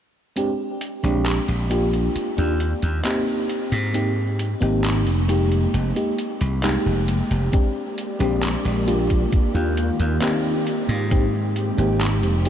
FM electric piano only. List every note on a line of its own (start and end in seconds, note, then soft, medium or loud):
0.36 0.50 G#3 medium
0.36 0.51 C4 medium
0.36 0.51 D4 medium
0.36 0.51 G4 medium
1.03 1.65 G#3 medium
1.03 1.65 C4 medium
1.03 1.66 D4 medium
1.03 1.66 G4 medium
1.70 2.32 A#3 medium
1.70 2.32 D4 medium
1.70 2.33 F4 medium
1.70 2.33 G4 medium
2.37 2.52 A#3 medium
2.37 2.52 D4 medium
2.37 2.52 F4 medium
2.37 2.52 G4 medium
3.04 3.89 A#3 medium
3.04 3.89 C4 medium
3.04 3.89 D#4 medium
3.04 3.90 G4 medium
3.94 4.08 A#3 medium
3.94 4.09 C4 medium
3.94 4.09 D#4 medium
3.94 4.09 G4 medium
4.61 5.23 A#3 medium
4.61 5.23 C4 medium
4.61 5.24 D#4 medium
4.61 5.24 G4 medium
5.28 5.90 G#3 medium
5.28 5.91 A#3 medium
5.28 5.91 D#4 medium
5.28 5.91 G4 medium
5.95 6.10 G#3 medium
5.95 6.10 A#3 medium
5.95 6.10 D#4 medium
5.95 6.11 G4 medium
6.62 7.47 G#3 medium
6.62 7.47 A#3 medium
6.62 7.48 D#4 medium
6.62 7.48 G4 medium
7.52 7.67 G#3 medium
7.52 7.67 C4 medium
7.52 7.67 D4 medium
7.52 7.68 G4 medium
8.19 8.81 G#3 medium
8.19 8.82 C4 medium
8.19 8.82 D4 medium
8.19 8.82 G4 medium
8.86 9.49 A#3 medium
8.86 9.49 D4 medium
8.86 9.49 F4 medium
8.86 9.49 G4 medium
9.54 9.68 A#3 medium
9.54 9.69 D4 medium
9.54 9.69 F4 medium
9.54 9.69 G4 medium
10.21 11.05 A#3 medium
10.21 11.06 C4 medium
10.21 11.06 D#4 medium
10.21 11.06 G4 loud
11.10 11.25 A#3 medium
11.10 11.25 C4 medium
11.10 11.26 D#4 medium
11.10 11.26 G4 medium
11.78 12.40 A#3 medium
11.78 12.40 C4 medium
11.78 12.40 D#4 medium
11.78 12.41 G4 medium
12.45 12.49 G#3 medium
12.45 12.49 A#3 medium
12.45 12.49 D#4 medium